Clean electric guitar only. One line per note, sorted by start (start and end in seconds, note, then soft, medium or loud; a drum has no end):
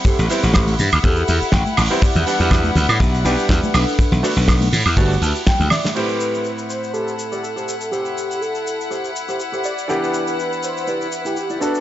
0.05 0.24 G4 loud
0.05 0.24 A4 loud
0.05 0.25 C5 loud
0.43 0.73 G4 medium
0.43 0.73 A4 medium
0.43 0.74 C5 medium
1.03 1.47 G4 medium
1.03 1.47 A4 medium
1.03 1.47 C5 medium
1.28 1.51 E5 medium
1.53 1.76 G5 medium
1.77 2.00 A5 medium
1.90 muted clean electric guitar stroke medium
2.02 2.21 E4 loud
2.02 2.21 G4 loud
2.02 2.21 D5 loud
2.40 2.70 E4 medium
2.40 2.70 G4 medium
2.40 2.71 D5 medium
3.00 3.44 E4 medium
3.00 3.44 G4 medium
3.00 3.44 D5 loud
3.74 4.23 D4 medium
3.74 4.24 A4 medium
3.74 4.24 B4 loud
4.37 4.67 D4 medium
4.37 4.67 A4 medium
4.37 4.67 B4 loud
4.97 5.41 F#4 medium
4.97 5.41 G4 medium
4.97 5.41 B4 medium
5.22 5.45 A5 medium
5.47 5.70 G5 medium
5.72 5.94 E5 medium
5.84 muted clean electric guitar stroke medium
5.96 6.45 G4 medium
5.96 6.45 A4 medium
5.96 6.45 C5 loud
6.94 7.13 G4 medium
6.94 7.13 A4 medium
6.94 7.13 C5 medium
7.32 7.43 G4 medium
7.32 7.43 A4 medium
7.32 7.44 D5 medium
7.56 7.74 G4 medium
7.56 7.75 A4 medium
7.56 7.75 C5 medium
7.92 8.41 G4 medium
7.92 8.42 A4 medium
7.92 8.42 C5 loud
8.90 9.10 G4 medium
8.90 9.10 A4 medium
8.90 9.10 C5 medium
9.28 9.40 G4 medium
9.28 9.40 A4 medium
9.28 9.40 C5 medium
9.53 9.71 G4 medium
9.53 9.71 A4 medium
9.53 9.72 C5 medium
9.89 10.38 E4 loud
9.89 10.38 G4 medium
9.89 10.38 D5 loud
10.87 11.06 E4 medium
10.87 11.07 G4 medium
10.87 11.07 D5 medium
11.25 11.36 E4 medium
11.25 11.37 G4 medium
11.25 11.37 B4 medium
11.50 11.61 E4 medium
11.50 11.61 G4 medium
11.50 11.62 D5 medium
11.61 11.80 D4 medium
11.61 11.80 A4 medium
11.61 11.80 B4 medium